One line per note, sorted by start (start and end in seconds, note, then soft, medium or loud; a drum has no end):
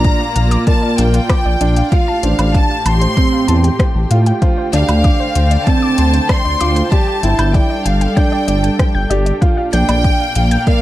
0.00 0.10 A#1 medium
0.00 1.92 A#2 medium
0.00 0.42 A3 medium
0.00 1.92 A#3 medium
0.00 0.22 D4 medium
0.00 2.90 F4 medium
0.00 0.42 G4 medium
0.00 2.92 D5 medium
0.00 0.63 A#5 loud
0.04 kick loud
0.04 closed hi-hat soft
0.20 0.27 F5 medium
0.36 0.57 A#1 medium
0.36 0.43 F5 medium
0.36 closed hi-hat medium
0.51 0.59 D6 loud
0.51 closed hi-hat soft
0.67 1.16 A#3 medium
0.67 0.78 D5 loud
0.67 0.96 A5 loud
0.67 kick loud
0.67 closed hi-hat soft
0.83 0.90 D5 medium
0.98 1.20 A#1 loud
0.98 1.06 F5 medium
0.98 1.92 G5 loud
0.98 closed hi-hat medium
1.14 1.21 F5 medium
1.14 closed hi-hat soft
1.29 1.37 D6 loud
1.29 kick loud
1.29 cross-stick medium
1.29 closed hi-hat soft
1.29 low woodblock medium
1.45 1.56 A#1 loud
1.45 1.56 D5 loud
1.61 1.82 A#1 medium
1.61 1.85 D4 medium
1.61 1.68 D5 medium
1.61 closed hi-hat medium
1.76 1.84 F5 medium
1.76 closed hi-hat soft
1.92 4.42 A2 medium
1.92 2.16 F4 loud
1.92 2.54 F5 loud
1.92 1.99 F5 medium
1.92 kick loud
1.92 closed hi-hat soft
2.06 5.43 G4 medium
2.06 2.15 A5 loud
2.19 6.92 A3 medium
2.23 2.34 A1 loud
2.23 2.72 D4 medium
2.23 2.34 C5 medium
2.23 closed hi-hat medium
2.39 2.60 A1 medium
2.39 2.46 C5 medium
2.39 closed hi-hat soft
2.39 low woodblock medium
2.54 2.62 F5 medium
2.54 2.86 A5 loud
2.54 kick loud
2.54 closed hi-hat soft
2.70 2.77 F5 medium
2.85 3.07 A1 medium
2.85 7.84 G5 medium
2.85 2.93 A5 loud
2.85 3.80 C6 loud
2.85 closed hi-hat medium
2.85 low woodblock medium
3.01 3.12 C5 loud
3.01 closed hi-hat soft
3.17 3.66 C4 medium
3.17 3.24 C5 medium
3.17 kick loud
3.17 closed hi-hat soft
3.33 3.40 F5 medium
3.48 3.70 E2 medium
3.48 3.55 A5 medium
3.48 closed hi-hat medium
3.64 3.71 G5 medium
3.64 closed hi-hat soft
3.79 3.87 G5 medium
3.79 kick loud
3.79 cross-stick medium
3.79 closed hi-hat soft
3.95 4.06 A1 loud
4.11 4.32 A2 medium
4.11 4.35 F4 medium
4.11 4.18 F5 medium
4.11 closed hi-hat medium
4.26 4.34 G5 loud
4.26 closed hi-hat soft
4.42 6.92 D3 medium
4.42 4.66 F4 loud
4.42 4.53 C5 loud
4.42 kick loud
4.42 closed hi-hat soft
4.58 4.65 C5 medium
4.63 7.92 C5 medium
4.73 4.84 D2 loud
4.73 5.22 D4 medium
4.73 4.81 D5 medium
4.73 5.63 F5 loud
4.73 closed hi-hat medium
4.89 5.10 D2 medium
4.89 4.96 D5 medium
4.89 closed hi-hat soft
4.89 low woodblock medium
5.04 5.15 D6 loud
5.04 kick loud
5.04 closed hi-hat soft
5.20 5.31 C5 loud
5.35 5.57 D2 medium
5.35 5.43 C5 medium
5.35 closed hi-hat medium
5.51 5.58 D5 medium
5.51 closed hi-hat soft
5.66 6.16 C4 medium
5.66 5.74 D5 medium
5.66 6.29 A5 loud
5.66 kick loud
5.66 closed hi-hat soft
5.82 5.93 D6 loud
5.98 6.20 D2 loud
5.98 6.09 C5 loud
5.98 closed hi-hat medium
6.14 6.21 C5 medium
6.14 closed hi-hat soft
6.28 6.37 D5 medium
6.28 6.91 C6 loud
6.28 kick loud
6.28 cross-stick medium
6.28 closed hi-hat soft
6.28 low woodblock medium
6.45 6.56 D2 loud
6.45 6.52 D5 medium
6.60 6.82 D2 medium
6.60 6.85 F4 medium
6.60 6.71 D6 loud
6.60 closed hi-hat medium
6.76 6.87 C5 loud
6.76 closed hi-hat soft
6.91 9.42 G3 medium
6.91 7.16 G4 loud
6.91 6.99 D5 medium
6.91 7.54 A5 loud
6.91 kick loud
6.91 closed hi-hat soft
7.03 10.42 D4 medium
7.03 10.42 A4 medium
7.07 7.15 G5 medium
7.23 7.34 G1 loud
7.23 7.72 E4 medium
7.23 7.30 G5 medium
7.23 closed hi-hat medium
7.39 7.60 G1 medium
7.39 7.50 G6 loud
7.39 closed hi-hat soft
7.39 low woodblock medium
7.54 7.65 D5 loud
7.54 7.85 G5 loud
7.54 kick loud
7.54 closed hi-hat soft
7.70 7.77 D5 medium
7.85 8.07 G1 medium
7.85 8.17 F5 medium
7.85 10.42 G5 medium
7.85 7.93 G5 medium
7.85 closed hi-hat medium
8.01 8.09 G5 medium
8.01 closed hi-hat soft
8.17 8.66 D4 loud
8.17 9.11 G5 loud
8.17 8.28 G6 loud
8.17 kick loud
8.17 closed hi-hat soft
8.32 8.43 D5 loud
8.48 8.70 G1 medium
8.48 8.55 D5 medium
8.48 closed hi-hat medium
8.64 8.71 G5 medium
8.64 closed hi-hat soft
8.79 8.86 G5 medium
8.79 kick loud
8.79 cross-stick medium
8.79 closed hi-hat soft
8.95 9.06 G1 loud
8.95 9.06 G6 loud
9.10 9.32 G1 medium
9.10 9.35 G4 medium
9.10 9.21 D5 loud
9.10 closed hi-hat medium
9.26 9.33 D5 medium
9.26 closed hi-hat soft
9.41 10.82 A#2 medium
9.41 9.66 F4 medium
9.41 9.49 F5 medium
9.41 kick loud
9.41 closed hi-hat soft
9.57 9.65 F5 medium
9.70 9.84 A#1 medium
9.70 10.82 A#3 medium
9.70 10.22 D4 medium
9.70 10.63 G5 loud
9.70 9.84 G6 loud
9.70 closed hi-hat medium
9.88 10.10 A#1 medium
9.88 9.99 D5 loud
9.88 closed hi-hat soft
9.88 low woodblock medium
9.95 10.82 F5 medium
10.04 10.82 D5 medium
10.04 10.12 D5 medium
10.04 kick loud
10.04 closed hi-hat soft
10.20 10.27 F5 medium
10.35 10.57 A#1 medium
10.35 10.43 F5 medium
10.35 closed hi-hat medium
10.51 10.62 G6 loud
10.51 closed hi-hat soft
10.67 10.82 A#3 medium
10.67 10.78 D5 loud
10.67 10.82 F5 loud
10.67 kick medium
10.67 closed hi-hat soft